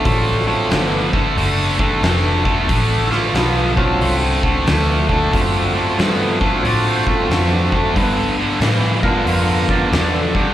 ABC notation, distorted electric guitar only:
X:1
M:4/4
L:1/8
Q:"Swing" 1/4=91
K:G
V:1 name="Distorted electric guitar" clef=bass
[D,A,] [D,A,] [D,B,] [D,A,] [D,A,] [D,A,] [D,A,] [D,A,] | [D,A,] [D,A,] [D,B,] [D,A,] [D,A,] [D,A,] [D,A,] [D,A,] | [D,A,] [D,A,] [D,B,] [D,A,] [D,A,] [D,A,] [D,A,] [D,A,] | [G,,D,] [G,,D,] [G,,E,] [G,,D,] [G,,D,] [G,,D,] [G,,D,] [G,,D,] |]